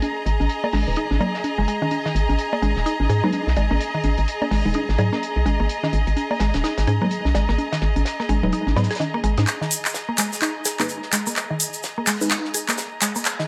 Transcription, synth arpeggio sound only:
0.64 0.66 A#3 medium
0.73 0.79 G#3 medium
0.97 1.02 D#4 medium
1.21 1.26 A#3 medium
1.58 1.61 G#3 medium
1.68 1.73 G#3 medium
1.82 1.86 D#3 loud
2.06 2.09 D#3 medium
2.53 2.55 A#3 medium
2.62 2.68 G#3 medium
2.86 2.91 D#4 medium
3.09 3.15 G#4 medium
3.24 3.29 A#3 medium
3.57 3.62 G#3 medium
3.71 3.73 A#3 medium
3.94 3.98 D#3 medium
4.42 4.44 A#3 medium
4.51 4.57 G#3 medium
4.75 4.80 D#4 medium
4.99 5.04 G#4 medium
5.13 5.18 A#3 medium
5.46 5.51 G#3 medium
5.60 5.62 A#3 medium
5.84 5.87 D#3 medium
6.31 6.33 A#3 medium
6.40 6.46 G#3 medium
6.64 6.69 D#4 medium
6.88 6.93 G#4 medium
7.02 7.07 A#3 medium
7.35 7.40 G#3 medium
7.49 7.51 A#3 medium
7.73 7.76 D#3 medium
8.20 8.22 A#3 medium
8.29 8.35 G#3 medium
8.53 8.58 D#4 medium
8.76 8.82 B3 medium
8.91 8.96 G#4 medium
9.00 9.03 D#3 loud
9.14 9.16 A#3 loud
9.24 9.29 G#3 medium
9.38 9.41 D#4 medium
9.61 9.65 D#3 medium
10.09 10.11 A#3 medium
10.18 10.24 G#3 medium
10.42 10.47 D#4 medium
10.65 10.71 G#4 medium
10.80 10.85 A#3 medium
11.13 11.18 G#3 medium
11.27 11.29 A#3 medium
11.50 11.54 D#3 medium
11.98 12.00 A#3 medium
12.07 12.13 G#3 medium
12.31 12.36 D#4 medium
12.54 12.60 G#4 medium
12.69 12.74 A#3 medium
13.02 13.07 G#3 medium
13.16 13.18 A#3 medium
13.39 13.43 D#3 medium

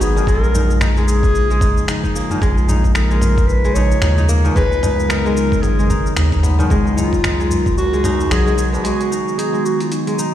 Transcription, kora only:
0.00 0.15 D#3 medium
0.00 0.19 G#3 medium
0.00 1.87 B3 medium
0.00 0.54 D#4 medium
0.16 0.33 D#3 medium
0.27 0.96 G#3 loud
0.55 0.81 D#4 medium
0.82 1.61 D#4 medium
0.98 1.49 G#3 medium
1.51 2.33 G#3 medium
1.61 1.88 D#4 medium
1.88 2.03 D#4 medium
2.04 2.68 D#4 medium
2.16 4.09 A#3 medium
2.30 4.43 D#3 medium
2.42 3.10 G#3 loud
2.69 2.94 D#4 medium
2.95 3.75 D#4 medium
3.11 3.63 G#3 medium
3.65 4.48 G#3 medium
3.76 4.02 D#4 medium
4.02 4.17 D#4 medium
4.18 4.82 D#4 medium
4.29 6.22 A#3 medium
4.44 4.61 D#3 medium
4.56 5.25 G#3 loud
4.83 5.09 D#4 medium
5.10 5.89 D#4 medium
5.26 5.78 G#3 medium
5.79 6.62 G#3 medium
5.90 6.16 D#4 medium
6.17 6.32 D#4 medium
6.33 6.97 D#4 medium
6.43 8.30 B3 medium
6.59 8.90 D#3 medium
6.70 7.39 G#3 loud
6.97 7.23 D#4 medium
7.24 8.04 D#4 medium
7.40 7.92 G#3 medium
7.93 8.45 G#3 medium
8.05 9.11 D#4 loud
8.31 8.56 F#3 loud
8.46 8.83 G#3 medium
8.58 8.90 F#3 medium
8.73 10.34 B3 medium
8.84 9.52 G#3 medium
9.11 9.38 D#4 medium
9.38 10.18 D#4 medium
9.53 10.06 G#3 medium
10.07 10.34 G#3 medium
10.19 10.34 D#4 medium

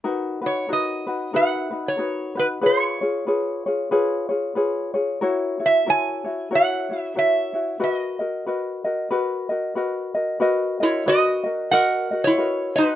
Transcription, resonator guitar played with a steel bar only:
0.46 0.72 C#5 medium
0.73 1.32 D#5 medium
1.36 1.88 F#5 medium
1.88 2.40 C#5 medium
2.39 2.46 B4 medium
2.66 4.54 C#5 medium
5.66 5.90 E5 medium
5.90 6.55 G#5 medium
6.55 7.00 F#5 medium
7.00 7.14 E5 medium
7.19 7.83 E5 medium
7.84 9.08 D#5 medium
10.83 11.06 E4 medium
10.83 11.07 C#5 medium
11.08 11.68 F#4 medium
11.08 11.74 D#5 medium
11.71 12.20 A#4 medium
11.71 12.25 F#5 loud
12.24 12.73 E4 medium
12.24 12.77 C#5 medium
12.76 12.96 D#4 medium
12.76 12.96 B4 medium

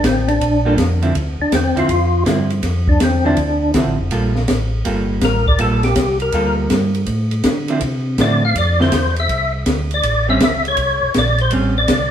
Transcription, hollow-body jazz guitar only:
0.65 0.77 G3 medium
0.65 0.77 A#3 medium
0.65 0.77 F4 medium
0.65 0.77 A4 medium
1.02 1.13 D3 medium
1.02 1.14 F3 medium
1.02 1.14 C4 medium
1.02 1.14 E4 medium
1.76 1.87 D3 medium
1.76 1.88 F3 medium
1.76 1.88 C4 medium
1.76 1.88 E4 medium
2.25 2.47 D3 medium
2.25 2.48 F3 medium
2.25 2.48 C4 medium
2.25 2.48 E4 medium
3.25 3.36 D3 medium
3.25 3.36 F3 medium
3.25 3.36 C4 medium
3.25 3.36 E4 medium
3.74 3.96 D3 medium
3.74 3.96 F3 medium
3.74 3.96 C4 medium
3.74 3.97 E4 medium
4.11 4.33 G3 medium
4.11 4.33 A#3 medium
4.11 4.33 F4 medium
4.11 4.34 A4 medium
4.85 5.41 G3 medium
4.85 5.42 A#3 medium
4.85 5.42 F4 medium
4.85 5.42 A4 medium
5.59 5.81 G3 medium
5.59 5.81 A#3 medium
5.59 5.81 F4 medium
5.59 5.82 A4 medium
6.34 6.90 G3 medium
6.34 6.90 A#3 medium
6.34 6.90 F4 medium
6.34 6.90 A4 medium
7.69 7.80 D3 medium
7.69 7.80 F3 medium
7.69 7.81 C4 medium
7.69 7.81 E4 medium
8.20 8.41 D3 medium
8.20 8.41 F3 medium
8.20 8.41 C4 medium
8.20 8.41 E4 medium
8.80 8.91 D3 medium
8.80 8.91 F3 medium
8.80 8.92 C4 medium
8.80 8.92 E4 medium
10.29 10.40 G3 medium
10.29 10.40 C4 medium
10.29 10.40 C#4 medium
11.52 11.74 G3 medium
11.52 11.74 C4 medium
11.52 11.74 C#4 medium

